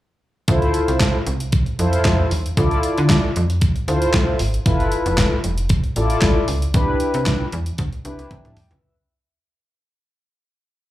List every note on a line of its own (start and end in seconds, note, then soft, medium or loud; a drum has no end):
0.48 0.78 D2 loud
0.48 1.17 E4 medium
0.48 1.17 F4 medium
0.48 1.17 A4 medium
0.48 1.17 C5 medium
0.48 kick loud
0.48 closed hi-hat loud
0.62 closed hi-hat soft
0.74 closed hi-hat medium
0.88 1.08 C2 medium
0.88 closed hi-hat medium
1.00 kick loud
1.00 snare loud
1.00 clap medium
1.00 closed hi-hat medium
1.27 1.56 C2 medium
1.27 closed hi-hat medium
1.40 closed hi-hat medium
1.52 kick loud
1.52 closed hi-hat medium
1.66 closed hi-hat soft
1.79 1.98 F2 medium
1.79 2.30 E4 medium
1.79 2.30 F4 medium
1.79 2.30 A4 medium
1.79 2.30 C5 loud
1.79 closed hi-hat medium
1.93 closed hi-hat medium
2.05 2.25 F2 medium
2.05 kick loud
2.05 snare loud
2.05 clap medium
2.05 closed hi-hat medium
2.31 2.51 D#2 medium
2.31 open hi-hat medium
2.46 closed hi-hat soft
2.56 2.77 D2 loud
2.56 3.26 E4 medium
2.56 3.26 F4 medium
2.56 3.26 A4 medium
2.56 3.26 D5 medium
2.56 kick loud
2.56 closed hi-hat loud
2.71 closed hi-hat soft
2.83 closed hi-hat medium
2.98 3.17 D3 loud
2.98 closed hi-hat medium
3.10 kick loud
3.10 snare loud
3.10 clap medium
3.10 closed hi-hat medium
3.36 3.66 F2 medium
3.36 closed hi-hat medium
3.50 closed hi-hat medium
3.61 kick loud
3.61 closed hi-hat loud
3.76 closed hi-hat soft
3.87 4.07 D2 loud
3.87 4.39 E4 medium
3.87 4.39 F4 medium
3.87 4.39 A4 medium
3.87 4.39 C5 loud
3.87 closed hi-hat medium
4.02 closed hi-hat medium
4.13 4.33 C2 medium
4.13 kick loud
4.13 snare loud
4.13 clap medium
4.13 closed hi-hat medium
4.39 4.59 G#1 medium
4.39 open hi-hat medium
4.54 closed hi-hat soft
4.66 4.96 G1 medium
4.66 5.35 E4 medium
4.66 5.35 F4 medium
4.66 5.35 A4 medium
4.66 5.35 B4 medium
4.66 kick loud
4.66 closed hi-hat loud
4.80 closed hi-hat soft
4.92 closed hi-hat medium
5.06 5.25 F1 loud
5.06 closed hi-hat medium
5.18 kick loud
5.18 snare loud
5.18 clap loud
5.18 closed hi-hat medium
5.44 5.74 F1 medium
5.44 closed hi-hat medium
5.58 closed hi-hat medium
5.69 kick loud
5.69 closed hi-hat loud
5.84 closed hi-hat soft
5.96 6.16 A1 medium
5.96 6.47 E4 medium
5.96 6.47 F4 medium
5.96 6.47 A4 medium
5.96 6.48 D5 medium
5.96 closed hi-hat medium
6.10 closed hi-hat medium
6.21 6.42 A1 medium
6.21 kick loud
6.21 snare loud
6.21 clap medium
6.21 closed hi-hat medium
6.48 6.68 C#2 medium
6.48 open hi-hat medium
6.62 closed hi-hat soft
6.74 6.94 C2 medium
6.74 7.43 D4 medium
6.74 7.43 E4 medium
6.74 7.43 G4 medium
6.74 7.43 B4 loud
6.74 kick loud
6.74 closed hi-hat loud
7.00 closed hi-hat medium
7.14 7.34 C3 medium
7.14 closed hi-hat medium
7.26 kick loud
7.26 snare loud
7.26 clap medium
7.26 closed hi-hat medium
7.52 7.72 E2 loud
7.52 closed hi-hat medium
7.66 closed hi-hat medium
7.78 7.89 D2 loud
7.78 kick loud
7.78 closed hi-hat medium
7.93 closed hi-hat soft
8.04 8.15 C2 loud
8.04 8.56 D4 medium
8.04 8.56 E4 medium
8.04 8.56 G4 medium
8.04 8.30 B4 medium
8.04 closed hi-hat medium
8.19 8.28 C2 medium
8.19 closed hi-hat medium
8.31 8.41 C3 medium
8.31 8.44 B4 medium
8.31 8.44 E5 medium
8.31 kick loud
8.31 closed hi-hat medium
8.31 high tom medium
8.45 8.54 C2 medium
8.45 8.57 E5 medium
8.45 8.56 A5 medium
8.45 closed hi-hat soft
8.45 mid tom medium
8.57 8.70 D5 medium
8.57 8.70 G5 medium
8.57 mid tom loud
8.57 open hi-hat medium
8.71 8.80 C#2 loud
8.71 8.96 B4 soft
8.71 8.96 E5 medium
8.71 closed hi-hat soft
8.71 floor tom medium